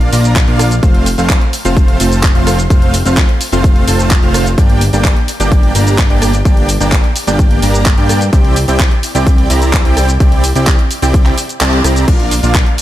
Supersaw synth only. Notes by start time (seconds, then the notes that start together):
0.13 A#3 D4 F4 D5 A#5
0.48 A#3 D4 F4 D5 F5
0.83 A3 C4 F4 C5 F5
1.18 A3 C4 F4 C5 F5
1.65 A3 C4 F4 C5 F5
2.00 A3 C4 F4 C5 A5
2.35 A3 C4 F4 C5 F5
2.70 A3 C4 F4 C5 F5
3.06 A3 C4 F4 C5 F5
3.52 A3 C4 F4 C5 F5
3.88 A3 C4 F4 C5 A5
4.23 A3 C4 F4 C5 F5
4.58 A#3 D4 G4 D5 G5
4.93 A#3 D4 G4 D5 G5
5.40 A#3 D4 G4 D5 G5
5.75 A#3 D4 G4 D5 A#5
6.10 A#3 D4 G4 D5 G5
6.45 A#3 D4 G4 D5 G5
6.80 A#3 D4 G4 D5 G5
7.27 A#3 D4 G4 D5 G5
7.62 A#3 D4 G4 D5 A#5
7.98 A#3 D4 G4 D5 G5
8.33 C4 E4 G4 D5 G5
8.68 C4 E4 G4 D5 G5
9.15 C4 E4 G4 D5 G5
9.50 C4 E4 G4 D5 A#5
9.85 C4 E4 G4 D5 G5
10.20 C4 E4 G4 D5 G5
10.55 C4 E4 G4 D5 G5
11.02 C4 E4 G4 D5 G5
11.61 C4 E4 G4 D5 A5
11.84 C4 E4 G4 D5 A#5
12.08 A#3 D4 F4 F5
12.43 A#3 D4 F4 D5 F5